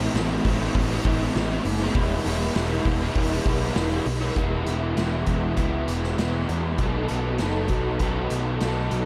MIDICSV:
0, 0, Header, 1, 5, 480
1, 0, Start_track
1, 0, Key_signature, 4, "major"
1, 0, Tempo, 604839
1, 1549, Time_signature, 4, 2, 24, 8
1, 7185, End_track
2, 0, Start_track
2, 0, Title_t, "Overdriven electric guitar"
2, 0, Program_c, 0, 29
2, 0, Note_on_c, 0, 45, 96
2, 0, Note_on_c, 0, 52, 78
2, 0, Note_on_c, 0, 57, 82
2, 0, Note_on_c, 0, 60, 91
2, 0, Note_on_c, 0, 64, 88
2, 98, Note_off_c, 0, 45, 0
2, 107, Note_on_c, 0, 45, 100
2, 112, Note_off_c, 0, 57, 0
2, 114, Note_off_c, 0, 52, 0
2, 117, Note_on_c, 0, 52, 102
2, 120, Note_off_c, 0, 60, 0
2, 122, Note_on_c, 0, 57, 107
2, 130, Note_on_c, 0, 60, 105
2, 133, Note_off_c, 0, 64, 0
2, 136, Note_on_c, 0, 64, 106
2, 226, Note_off_c, 0, 64, 0
2, 229, Note_on_c, 0, 64, 88
2, 233, Note_off_c, 0, 60, 0
2, 243, Note_on_c, 0, 60, 70
2, 246, Note_off_c, 0, 57, 0
2, 256, Note_on_c, 0, 57, 68
2, 350, Note_off_c, 0, 52, 0
2, 350, Note_off_c, 0, 57, 0
2, 353, Note_on_c, 0, 52, 85
2, 359, Note_off_c, 0, 60, 0
2, 359, Note_on_c, 0, 57, 82
2, 369, Note_on_c, 0, 60, 92
2, 376, Note_off_c, 0, 64, 0
2, 379, Note_on_c, 0, 64, 86
2, 463, Note_off_c, 0, 64, 0
2, 466, Note_on_c, 0, 64, 73
2, 470, Note_off_c, 0, 45, 0
2, 475, Note_off_c, 0, 60, 0
2, 484, Note_off_c, 0, 57, 0
2, 484, Note_on_c, 0, 60, 68
2, 494, Note_on_c, 0, 57, 62
2, 707, Note_off_c, 0, 64, 0
2, 710, Note_on_c, 0, 64, 74
2, 717, Note_off_c, 0, 60, 0
2, 726, Note_on_c, 0, 60, 60
2, 728, Note_off_c, 0, 57, 0
2, 737, Note_on_c, 0, 57, 57
2, 829, Note_off_c, 0, 52, 0
2, 830, Note_off_c, 0, 57, 0
2, 832, Note_on_c, 0, 52, 85
2, 840, Note_off_c, 0, 60, 0
2, 840, Note_on_c, 0, 57, 84
2, 849, Note_on_c, 0, 60, 87
2, 854, Note_off_c, 0, 64, 0
2, 857, Note_on_c, 0, 64, 99
2, 1072, Note_on_c, 0, 45, 102
2, 1076, Note_off_c, 0, 52, 0
2, 1078, Note_off_c, 0, 57, 0
2, 1079, Note_on_c, 0, 52, 110
2, 1081, Note_off_c, 0, 60, 0
2, 1087, Note_on_c, 0, 57, 98
2, 1091, Note_on_c, 0, 60, 110
2, 1094, Note_off_c, 0, 64, 0
2, 1097, Note_on_c, 0, 64, 110
2, 1186, Note_off_c, 0, 64, 0
2, 1189, Note_on_c, 0, 64, 80
2, 1196, Note_off_c, 0, 60, 0
2, 1205, Note_on_c, 0, 60, 63
2, 1208, Note_off_c, 0, 57, 0
2, 1218, Note_on_c, 0, 57, 66
2, 1309, Note_off_c, 0, 57, 0
2, 1309, Note_off_c, 0, 60, 0
2, 1310, Note_off_c, 0, 52, 0
2, 1318, Note_off_c, 0, 64, 0
2, 1424, Note_on_c, 0, 64, 76
2, 1430, Note_off_c, 0, 45, 0
2, 1443, Note_on_c, 0, 60, 67
2, 1455, Note_on_c, 0, 57, 68
2, 1541, Note_off_c, 0, 60, 0
2, 1543, Note_on_c, 0, 52, 94
2, 1548, Note_off_c, 0, 57, 0
2, 1553, Note_on_c, 0, 56, 98
2, 1562, Note_on_c, 0, 59, 89
2, 1569, Note_off_c, 0, 64, 0
2, 1572, Note_on_c, 0, 64, 117
2, 1775, Note_off_c, 0, 52, 0
2, 1783, Note_off_c, 0, 56, 0
2, 1784, Note_on_c, 0, 52, 68
2, 1791, Note_off_c, 0, 59, 0
2, 1792, Note_on_c, 0, 56, 87
2, 1799, Note_off_c, 0, 64, 0
2, 1800, Note_on_c, 0, 59, 86
2, 1809, Note_on_c, 0, 64, 84
2, 2009, Note_off_c, 0, 52, 0
2, 2016, Note_off_c, 0, 56, 0
2, 2018, Note_on_c, 0, 52, 88
2, 2025, Note_off_c, 0, 59, 0
2, 2026, Note_on_c, 0, 56, 99
2, 2031, Note_off_c, 0, 64, 0
2, 2035, Note_on_c, 0, 59, 99
2, 2041, Note_on_c, 0, 64, 115
2, 2126, Note_off_c, 0, 64, 0
2, 2136, Note_on_c, 0, 64, 79
2, 2143, Note_off_c, 0, 59, 0
2, 2152, Note_off_c, 0, 56, 0
2, 2153, Note_on_c, 0, 59, 74
2, 2162, Note_on_c, 0, 56, 66
2, 2246, Note_off_c, 0, 52, 0
2, 2255, Note_off_c, 0, 56, 0
2, 2255, Note_on_c, 0, 52, 81
2, 2264, Note_off_c, 0, 59, 0
2, 2265, Note_on_c, 0, 56, 76
2, 2270, Note_off_c, 0, 64, 0
2, 2274, Note_on_c, 0, 59, 90
2, 2280, Note_on_c, 0, 64, 84
2, 2370, Note_off_c, 0, 64, 0
2, 2380, Note_on_c, 0, 64, 72
2, 2386, Note_off_c, 0, 59, 0
2, 2396, Note_off_c, 0, 56, 0
2, 2396, Note_on_c, 0, 59, 68
2, 2406, Note_on_c, 0, 56, 57
2, 2605, Note_off_c, 0, 64, 0
2, 2614, Note_on_c, 0, 64, 64
2, 2618, Note_off_c, 0, 59, 0
2, 2621, Note_off_c, 0, 52, 0
2, 2628, Note_on_c, 0, 59, 56
2, 2629, Note_off_c, 0, 56, 0
2, 2638, Note_on_c, 0, 56, 58
2, 2734, Note_off_c, 0, 56, 0
2, 2735, Note_on_c, 0, 52, 81
2, 2743, Note_off_c, 0, 59, 0
2, 2743, Note_on_c, 0, 56, 81
2, 2751, Note_off_c, 0, 64, 0
2, 2752, Note_on_c, 0, 59, 87
2, 2761, Note_on_c, 0, 64, 84
2, 2969, Note_off_c, 0, 52, 0
2, 2978, Note_on_c, 0, 52, 92
2, 2982, Note_off_c, 0, 56, 0
2, 2989, Note_off_c, 0, 59, 0
2, 2991, Note_on_c, 0, 56, 95
2, 2996, Note_off_c, 0, 64, 0
2, 2999, Note_on_c, 0, 59, 109
2, 3005, Note_on_c, 0, 64, 113
2, 3093, Note_off_c, 0, 64, 0
2, 3102, Note_on_c, 0, 64, 72
2, 3106, Note_off_c, 0, 59, 0
2, 3115, Note_on_c, 0, 59, 72
2, 3117, Note_off_c, 0, 56, 0
2, 3127, Note_on_c, 0, 56, 60
2, 3209, Note_off_c, 0, 52, 0
2, 3211, Note_off_c, 0, 56, 0
2, 3214, Note_off_c, 0, 59, 0
2, 3217, Note_off_c, 0, 64, 0
2, 3337, Note_on_c, 0, 64, 70
2, 3349, Note_on_c, 0, 59, 63
2, 3362, Note_on_c, 0, 56, 58
2, 3447, Note_off_c, 0, 64, 0
2, 3452, Note_on_c, 0, 52, 86
2, 3453, Note_off_c, 0, 56, 0
2, 3453, Note_off_c, 0, 59, 0
2, 3463, Note_on_c, 0, 56, 79
2, 3471, Note_on_c, 0, 59, 87
2, 3477, Note_on_c, 0, 64, 97
2, 3688, Note_off_c, 0, 64, 0
2, 3691, Note_on_c, 0, 64, 64
2, 3704, Note_off_c, 0, 59, 0
2, 3707, Note_on_c, 0, 59, 50
2, 3712, Note_off_c, 0, 56, 0
2, 3722, Note_on_c, 0, 56, 48
2, 3927, Note_off_c, 0, 52, 0
2, 3930, Note_off_c, 0, 56, 0
2, 3930, Note_on_c, 0, 52, 70
2, 3939, Note_on_c, 0, 56, 69
2, 3943, Note_off_c, 0, 59, 0
2, 3946, Note_on_c, 0, 59, 68
2, 3956, Note_off_c, 0, 64, 0
2, 3960, Note_on_c, 0, 64, 67
2, 4412, Note_off_c, 0, 52, 0
2, 4416, Note_on_c, 0, 52, 73
2, 4420, Note_off_c, 0, 56, 0
2, 4430, Note_on_c, 0, 56, 81
2, 4434, Note_off_c, 0, 59, 0
2, 4437, Note_on_c, 0, 59, 80
2, 4443, Note_off_c, 0, 64, 0
2, 4446, Note_on_c, 0, 64, 87
2, 4896, Note_off_c, 0, 52, 0
2, 4897, Note_off_c, 0, 56, 0
2, 4899, Note_on_c, 0, 52, 71
2, 4906, Note_on_c, 0, 56, 73
2, 4914, Note_off_c, 0, 59, 0
2, 4917, Note_on_c, 0, 59, 83
2, 4919, Note_off_c, 0, 64, 0
2, 4922, Note_on_c, 0, 64, 68
2, 5374, Note_off_c, 0, 56, 0
2, 5379, Note_on_c, 0, 47, 79
2, 5383, Note_off_c, 0, 52, 0
2, 5386, Note_on_c, 0, 51, 87
2, 5389, Note_on_c, 0, 54, 76
2, 5393, Note_off_c, 0, 59, 0
2, 5395, Note_off_c, 0, 64, 0
2, 5397, Note_on_c, 0, 59, 89
2, 5398, Note_on_c, 0, 63, 82
2, 5404, Note_on_c, 0, 69, 100
2, 5615, Note_off_c, 0, 69, 0
2, 5624, Note_off_c, 0, 63, 0
2, 5624, Note_on_c, 0, 69, 70
2, 5633, Note_on_c, 0, 63, 63
2, 5639, Note_off_c, 0, 59, 0
2, 5642, Note_on_c, 0, 59, 61
2, 5645, Note_off_c, 0, 54, 0
2, 5648, Note_on_c, 0, 54, 52
2, 5863, Note_off_c, 0, 54, 0
2, 5866, Note_off_c, 0, 47, 0
2, 5866, Note_on_c, 0, 54, 61
2, 5870, Note_off_c, 0, 51, 0
2, 5871, Note_off_c, 0, 59, 0
2, 5875, Note_on_c, 0, 59, 73
2, 5876, Note_off_c, 0, 63, 0
2, 5884, Note_off_c, 0, 69, 0
2, 5885, Note_on_c, 0, 63, 68
2, 5893, Note_on_c, 0, 69, 72
2, 6346, Note_on_c, 0, 47, 76
2, 6350, Note_on_c, 0, 51, 81
2, 6352, Note_off_c, 0, 54, 0
2, 6355, Note_off_c, 0, 59, 0
2, 6356, Note_on_c, 0, 54, 76
2, 6360, Note_off_c, 0, 63, 0
2, 6361, Note_off_c, 0, 69, 0
2, 6364, Note_on_c, 0, 59, 94
2, 6370, Note_on_c, 0, 63, 80
2, 6370, Note_on_c, 0, 69, 91
2, 6825, Note_off_c, 0, 54, 0
2, 6828, Note_off_c, 0, 59, 0
2, 6828, Note_on_c, 0, 54, 72
2, 6837, Note_on_c, 0, 59, 78
2, 6839, Note_off_c, 0, 63, 0
2, 6844, Note_off_c, 0, 69, 0
2, 6849, Note_on_c, 0, 63, 70
2, 6854, Note_on_c, 0, 69, 86
2, 7072, Note_off_c, 0, 47, 0
2, 7074, Note_off_c, 0, 51, 0
2, 7185, Note_off_c, 0, 54, 0
2, 7185, Note_off_c, 0, 59, 0
2, 7185, Note_off_c, 0, 63, 0
2, 7185, Note_off_c, 0, 69, 0
2, 7185, End_track
3, 0, Start_track
3, 0, Title_t, "Picked electric bass"
3, 0, Program_c, 1, 34
3, 113, Note_on_c, 1, 33, 98
3, 295, Note_off_c, 1, 33, 0
3, 356, Note_on_c, 1, 33, 99
3, 537, Note_off_c, 1, 33, 0
3, 594, Note_on_c, 1, 33, 86
3, 776, Note_off_c, 1, 33, 0
3, 832, Note_on_c, 1, 33, 87
3, 1014, Note_off_c, 1, 33, 0
3, 1074, Note_on_c, 1, 33, 89
3, 1254, Note_off_c, 1, 33, 0
3, 1310, Note_on_c, 1, 30, 88
3, 1492, Note_off_c, 1, 30, 0
3, 1547, Note_on_c, 1, 28, 100
3, 1730, Note_off_c, 1, 28, 0
3, 1792, Note_on_c, 1, 28, 87
3, 1973, Note_off_c, 1, 28, 0
3, 2030, Note_on_c, 1, 28, 87
3, 2211, Note_off_c, 1, 28, 0
3, 2265, Note_on_c, 1, 28, 92
3, 2448, Note_off_c, 1, 28, 0
3, 2505, Note_on_c, 1, 28, 93
3, 2688, Note_off_c, 1, 28, 0
3, 2742, Note_on_c, 1, 35, 90
3, 2926, Note_off_c, 1, 35, 0
3, 2982, Note_on_c, 1, 28, 89
3, 3166, Note_off_c, 1, 28, 0
3, 3222, Note_on_c, 1, 35, 81
3, 3406, Note_off_c, 1, 35, 0
3, 3464, Note_on_c, 1, 28, 85
3, 3676, Note_off_c, 1, 28, 0
3, 3705, Note_on_c, 1, 28, 77
3, 3917, Note_off_c, 1, 28, 0
3, 3947, Note_on_c, 1, 28, 71
3, 4158, Note_off_c, 1, 28, 0
3, 4183, Note_on_c, 1, 28, 78
3, 4396, Note_off_c, 1, 28, 0
3, 4426, Note_on_c, 1, 37, 78
3, 4638, Note_off_c, 1, 37, 0
3, 4665, Note_on_c, 1, 28, 78
3, 4878, Note_off_c, 1, 28, 0
3, 4905, Note_on_c, 1, 28, 76
3, 5118, Note_off_c, 1, 28, 0
3, 5152, Note_on_c, 1, 40, 80
3, 5362, Note_off_c, 1, 40, 0
3, 5385, Note_on_c, 1, 35, 91
3, 5599, Note_off_c, 1, 35, 0
3, 5639, Note_on_c, 1, 35, 79
3, 5847, Note_off_c, 1, 35, 0
3, 5873, Note_on_c, 1, 30, 75
3, 6084, Note_off_c, 1, 30, 0
3, 6106, Note_on_c, 1, 35, 77
3, 6320, Note_off_c, 1, 35, 0
3, 6347, Note_on_c, 1, 35, 82
3, 6561, Note_off_c, 1, 35, 0
3, 6595, Note_on_c, 1, 35, 77
3, 6806, Note_off_c, 1, 35, 0
3, 6837, Note_on_c, 1, 35, 77
3, 7048, Note_off_c, 1, 35, 0
3, 7076, Note_on_c, 1, 35, 81
3, 7185, Note_off_c, 1, 35, 0
3, 7185, End_track
4, 0, Start_track
4, 0, Title_t, "Muted overdriven electric guitar strokes"
4, 1313, Note_on_c, 9, 29, 43
4, 1392, Note_off_c, 9, 29, 0
4, 3219, Note_on_c, 9, 29, 44
4, 3298, Note_off_c, 9, 29, 0
4, 7185, End_track
5, 0, Start_track
5, 0, Title_t, "Drums"
5, 120, Note_on_c, 9, 46, 86
5, 126, Note_on_c, 9, 38, 115
5, 199, Note_off_c, 9, 46, 0
5, 206, Note_off_c, 9, 38, 0
5, 356, Note_on_c, 9, 36, 81
5, 356, Note_on_c, 9, 46, 66
5, 435, Note_off_c, 9, 46, 0
5, 436, Note_off_c, 9, 36, 0
5, 595, Note_on_c, 9, 36, 90
5, 597, Note_on_c, 9, 46, 90
5, 674, Note_off_c, 9, 36, 0
5, 676, Note_off_c, 9, 46, 0
5, 833, Note_on_c, 9, 46, 72
5, 834, Note_on_c, 9, 36, 94
5, 912, Note_off_c, 9, 46, 0
5, 913, Note_off_c, 9, 36, 0
5, 1073, Note_on_c, 9, 46, 84
5, 1080, Note_on_c, 9, 38, 109
5, 1153, Note_off_c, 9, 46, 0
5, 1159, Note_off_c, 9, 38, 0
5, 1310, Note_on_c, 9, 46, 60
5, 1389, Note_off_c, 9, 46, 0
5, 1547, Note_on_c, 9, 46, 75
5, 1548, Note_on_c, 9, 36, 116
5, 1626, Note_off_c, 9, 46, 0
5, 1627, Note_off_c, 9, 36, 0
5, 1787, Note_on_c, 9, 46, 60
5, 1866, Note_off_c, 9, 46, 0
5, 2026, Note_on_c, 9, 46, 76
5, 2033, Note_on_c, 9, 38, 110
5, 2106, Note_off_c, 9, 46, 0
5, 2112, Note_off_c, 9, 38, 0
5, 2262, Note_on_c, 9, 46, 57
5, 2265, Note_on_c, 9, 36, 86
5, 2341, Note_off_c, 9, 46, 0
5, 2344, Note_off_c, 9, 36, 0
5, 2501, Note_on_c, 9, 46, 83
5, 2505, Note_on_c, 9, 36, 89
5, 2580, Note_off_c, 9, 46, 0
5, 2584, Note_off_c, 9, 36, 0
5, 2742, Note_on_c, 9, 46, 61
5, 2744, Note_on_c, 9, 36, 86
5, 2821, Note_off_c, 9, 46, 0
5, 2823, Note_off_c, 9, 36, 0
5, 2978, Note_on_c, 9, 46, 85
5, 2985, Note_on_c, 9, 38, 121
5, 3058, Note_off_c, 9, 46, 0
5, 3064, Note_off_c, 9, 38, 0
5, 3220, Note_on_c, 9, 46, 60
5, 3300, Note_off_c, 9, 46, 0
5, 3460, Note_on_c, 9, 42, 76
5, 3463, Note_on_c, 9, 36, 103
5, 3539, Note_off_c, 9, 42, 0
5, 3542, Note_off_c, 9, 36, 0
5, 3703, Note_on_c, 9, 42, 52
5, 3782, Note_off_c, 9, 42, 0
5, 3944, Note_on_c, 9, 42, 76
5, 3951, Note_on_c, 9, 38, 95
5, 4024, Note_off_c, 9, 42, 0
5, 4030, Note_off_c, 9, 38, 0
5, 4178, Note_on_c, 9, 42, 58
5, 4184, Note_on_c, 9, 36, 73
5, 4258, Note_off_c, 9, 42, 0
5, 4263, Note_off_c, 9, 36, 0
5, 4419, Note_on_c, 9, 42, 69
5, 4424, Note_on_c, 9, 36, 73
5, 4498, Note_off_c, 9, 42, 0
5, 4503, Note_off_c, 9, 36, 0
5, 4666, Note_on_c, 9, 42, 60
5, 4745, Note_off_c, 9, 42, 0
5, 4791, Note_on_c, 9, 38, 29
5, 4870, Note_off_c, 9, 38, 0
5, 4907, Note_on_c, 9, 42, 75
5, 4913, Note_on_c, 9, 38, 101
5, 4986, Note_off_c, 9, 42, 0
5, 4993, Note_off_c, 9, 38, 0
5, 5150, Note_on_c, 9, 42, 48
5, 5230, Note_off_c, 9, 42, 0
5, 5383, Note_on_c, 9, 42, 72
5, 5387, Note_on_c, 9, 36, 99
5, 5462, Note_off_c, 9, 42, 0
5, 5466, Note_off_c, 9, 36, 0
5, 5622, Note_on_c, 9, 42, 54
5, 5701, Note_off_c, 9, 42, 0
5, 5860, Note_on_c, 9, 42, 69
5, 5866, Note_on_c, 9, 38, 95
5, 5939, Note_off_c, 9, 42, 0
5, 5945, Note_off_c, 9, 38, 0
5, 6096, Note_on_c, 9, 42, 47
5, 6108, Note_on_c, 9, 36, 65
5, 6176, Note_off_c, 9, 42, 0
5, 6187, Note_off_c, 9, 36, 0
5, 6344, Note_on_c, 9, 42, 71
5, 6349, Note_on_c, 9, 36, 74
5, 6423, Note_off_c, 9, 42, 0
5, 6428, Note_off_c, 9, 36, 0
5, 6588, Note_on_c, 9, 42, 53
5, 6668, Note_off_c, 9, 42, 0
5, 6830, Note_on_c, 9, 42, 73
5, 6836, Note_on_c, 9, 38, 101
5, 6909, Note_off_c, 9, 42, 0
5, 6915, Note_off_c, 9, 38, 0
5, 7072, Note_on_c, 9, 42, 50
5, 7152, Note_off_c, 9, 42, 0
5, 7185, End_track
0, 0, End_of_file